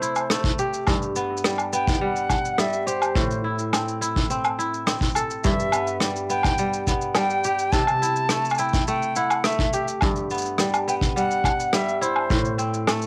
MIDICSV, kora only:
0, 0, Header, 1, 2, 480
1, 0, Start_track
1, 0, Key_signature, 1, "major"
1, 0, Tempo, 571429
1, 730, Time_signature, 4, 2, 24, 8
1, 10975, End_track
2, 0, Start_track
2, 0, Title_t, "Kora"
2, 0, Program_c, 0, 46
2, 0, Note_on_c, 0, 48, 77
2, 0, Note_on_c, 0, 57, 64
2, 14, Note_on_c, 0, 64, 57
2, 254, Note_off_c, 0, 57, 0
2, 257, Note_on_c, 0, 57, 61
2, 495, Note_on_c, 0, 67, 70
2, 731, Note_on_c, 0, 43, 82
2, 772, Note_off_c, 0, 48, 0
2, 974, Note_on_c, 0, 59, 57
2, 1212, Note_on_c, 0, 55, 59
2, 1331, Note_off_c, 0, 64, 0
2, 1447, Note_off_c, 0, 59, 0
2, 1451, Note_on_c, 0, 59, 61
2, 1680, Note_off_c, 0, 55, 0
2, 1681, Note_off_c, 0, 67, 0
2, 1690, Note_on_c, 0, 55, 64
2, 1935, Note_off_c, 0, 57, 0
2, 2157, Note_off_c, 0, 55, 0
2, 2167, Note_on_c, 0, 55, 61
2, 2409, Note_on_c, 0, 67, 65
2, 2653, Note_on_c, 0, 45, 84
2, 2692, Note_off_c, 0, 43, 0
2, 2692, Note_off_c, 0, 55, 0
2, 2892, Note_on_c, 0, 64, 55
2, 3016, Note_off_c, 0, 59, 0
2, 3132, Note_on_c, 0, 60, 59
2, 3368, Note_off_c, 0, 64, 0
2, 3371, Note_on_c, 0, 64, 62
2, 3595, Note_off_c, 0, 67, 0
2, 3610, Note_off_c, 0, 60, 0
2, 3613, Note_on_c, 0, 60, 60
2, 3850, Note_off_c, 0, 64, 0
2, 3853, Note_on_c, 0, 64, 59
2, 4085, Note_off_c, 0, 60, 0
2, 4088, Note_on_c, 0, 60, 57
2, 4333, Note_on_c, 0, 69, 61
2, 4571, Note_on_c, 0, 43, 77
2, 4612, Note_off_c, 0, 45, 0
2, 4811, Note_on_c, 0, 59, 51
2, 4861, Note_off_c, 0, 60, 0
2, 5052, Note_on_c, 0, 55, 59
2, 5170, Note_off_c, 0, 64, 0
2, 5287, Note_off_c, 0, 59, 0
2, 5290, Note_on_c, 0, 59, 63
2, 5440, Note_off_c, 0, 69, 0
2, 5530, Note_off_c, 0, 55, 0
2, 5533, Note_on_c, 0, 55, 63
2, 5772, Note_off_c, 0, 59, 0
2, 5775, Note_on_c, 0, 59, 62
2, 6009, Note_off_c, 0, 55, 0
2, 6013, Note_on_c, 0, 55, 65
2, 6256, Note_on_c, 0, 67, 66
2, 6496, Note_on_c, 0, 48, 75
2, 6532, Note_off_c, 0, 43, 0
2, 6735, Note_on_c, 0, 64, 54
2, 6973, Note_on_c, 0, 57, 60
2, 7024, Note_off_c, 0, 55, 0
2, 7212, Note_off_c, 0, 64, 0
2, 7216, Note_on_c, 0, 64, 65
2, 7341, Note_off_c, 0, 59, 0
2, 7442, Note_off_c, 0, 67, 0
2, 7453, Note_off_c, 0, 57, 0
2, 7456, Note_on_c, 0, 57, 68
2, 7693, Note_off_c, 0, 64, 0
2, 7696, Note_on_c, 0, 64, 62
2, 7934, Note_off_c, 0, 57, 0
2, 7937, Note_on_c, 0, 57, 60
2, 8177, Note_on_c, 0, 67, 72
2, 8418, Note_on_c, 0, 43, 76
2, 8452, Note_off_c, 0, 48, 0
2, 8660, Note_on_c, 0, 59, 60
2, 8896, Note_on_c, 0, 55, 61
2, 9012, Note_off_c, 0, 64, 0
2, 9133, Note_off_c, 0, 59, 0
2, 9137, Note_on_c, 0, 59, 65
2, 9363, Note_off_c, 0, 67, 0
2, 9366, Note_off_c, 0, 55, 0
2, 9376, Note_on_c, 0, 55, 62
2, 9615, Note_off_c, 0, 57, 0
2, 9845, Note_off_c, 0, 55, 0
2, 9855, Note_on_c, 0, 55, 61
2, 10091, Note_on_c, 0, 64, 67
2, 10334, Note_on_c, 0, 45, 78
2, 10372, Note_off_c, 0, 43, 0
2, 10372, Note_off_c, 0, 55, 0
2, 10569, Note_on_c, 0, 60, 60
2, 10619, Note_off_c, 0, 59, 0
2, 10813, Note_on_c, 0, 57, 60
2, 10975, Note_off_c, 0, 45, 0
2, 10975, Note_off_c, 0, 57, 0
2, 10975, Note_off_c, 0, 60, 0
2, 10975, Note_off_c, 0, 64, 0
2, 10975, End_track
0, 0, End_of_file